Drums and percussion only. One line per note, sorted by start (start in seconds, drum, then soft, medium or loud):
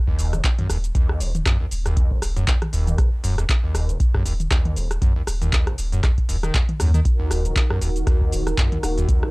0.08 kick medium
0.19 open hi-hat loud
0.19 shaker medium
0.33 cross-stick soft
0.33 closed hi-hat medium
0.33 mid tom medium
0.33 shaker soft
0.44 kick loud
0.44 clap loud
0.44 closed hi-hat medium
0.44 shaker soft
0.59 closed hi-hat soft
0.59 mid tom medium
0.70 cross-stick medium
0.70 open hi-hat medium
0.70 shaker medium
0.84 closed hi-hat medium
0.84 shaker soft
0.95 kick loud
0.95 closed hi-hat medium
0.95 shaker soft
1.09 cross-stick medium
1.20 open hi-hat loud
1.20 shaker medium
1.35 closed hi-hat medium
1.35 mid tom loud
1.35 shaker soft
1.46 kick loud
1.46 cross-stick medium
1.46 clap loud
1.46 closed hi-hat medium
1.46 shaker soft
1.71 open hi-hat loud
1.71 shaker medium
1.86 cross-stick medium
1.86 closed hi-hat soft
1.86 shaker soft
1.97 kick loud
1.97 closed hi-hat medium
1.97 shaker soft
2.11 kick medium
2.22 cross-stick medium
2.22 open hi-hat loud
2.22 shaker medium
2.37 closed hi-hat medium
2.37 shaker soft
2.48 kick loud
2.48 clap loud
2.48 closed hi-hat medium
2.48 shaker soft
2.62 cross-stick medium
2.62 closed hi-hat soft
2.62 mid tom medium
2.73 open hi-hat loud
2.73 shaker medium
2.87 closed hi-hat medium
2.87 mid tom medium
2.87 shaker soft
2.98 kick loud
2.98 cross-stick medium
2.98 closed hi-hat medium
2.98 shaker soft
3.24 open hi-hat loud
3.24 shaker medium
3.38 cross-stick medium
3.38 closed hi-hat medium
3.38 shaker soft
3.49 kick loud
3.49 clap loud
3.49 closed hi-hat medium
3.49 shaker soft
3.75 cross-stick medium
3.75 open hi-hat loud
3.75 shaker medium
3.89 closed hi-hat soft
3.89 shaker soft
4.00 kick loud
4.00 closed hi-hat medium
4.00 shaker soft
4.14 kick medium
4.14 cross-stick medium
4.26 open hi-hat loud
4.26 shaker medium
4.40 closed hi-hat soft
4.40 mid tom medium
4.40 shaker soft
4.51 kick loud
4.51 cross-stick medium
4.51 clap loud
4.51 closed hi-hat medium
4.51 shaker soft
4.65 closed hi-hat soft
4.65 mid tom medium
4.76 open hi-hat medium
4.76 shaker medium
4.91 cross-stick medium
4.91 closed hi-hat medium
4.91 shaker soft
5.02 kick loud
5.02 closed hi-hat medium
5.02 shaker soft
5.27 cross-stick medium
5.27 open hi-hat loud
5.27 shaker medium
5.42 closed hi-hat medium
5.42 mid tom loud
5.42 shaker soft
5.53 kick loud
5.53 clap loud
5.53 closed hi-hat medium
5.53 shaker soft
5.67 cross-stick medium
5.67 closed hi-hat soft
5.78 open hi-hat medium
5.78 shaker medium
5.92 closed hi-hat soft
5.92 shaker soft
6.03 kick loud
6.03 cross-stick medium
6.03 clap medium
6.03 closed hi-hat medium
6.03 shaker soft
6.18 kick medium
6.18 closed hi-hat soft
6.29 open hi-hat loud
6.29 shaker medium
6.43 cross-stick medium
6.43 closed hi-hat soft
6.43 shaker soft
6.54 kick loud
6.54 clap loud
6.54 closed hi-hat medium
6.54 shaker soft
6.69 closed hi-hat soft
6.69 mid tom medium
6.80 cross-stick medium
6.80 open hi-hat medium
6.80 shaker medium
6.94 closed hi-hat soft
6.94 mid tom medium
6.94 shaker soft
7.05 kick loud
7.05 closed hi-hat medium
7.05 shaker soft
7.31 cross-stick medium
7.31 open hi-hat loud
7.31 shaker medium
7.45 closed hi-hat medium
7.45 shaker soft
7.56 kick loud
7.56 clap loud
7.56 closed hi-hat medium
7.56 shaker soft
7.70 cross-stick medium
7.81 open hi-hat loud
7.81 shaker medium
7.96 closed hi-hat soft
7.96 shaker soft
8.07 kick loud
8.07 cross-stick medium
8.07 closed hi-hat medium
8.07 shaker soft
8.21 kick medium
8.32 open hi-hat loud
8.32 shaker medium
8.47 cross-stick medium
8.47 closed hi-hat soft
8.47 mid tom medium
8.47 shaker soft
8.58 kick loud
8.58 clap loud
8.58 closed hi-hat medium
8.58 shaker soft
8.72 closed hi-hat soft
8.72 mid tom medium
8.83 cross-stick medium
8.83 open hi-hat medium
8.83 shaker medium
8.98 closed hi-hat soft
8.98 shaker soft
9.08 kick loud
9.08 closed hi-hat medium
9.08 shaker soft
9.23 cross-stick medium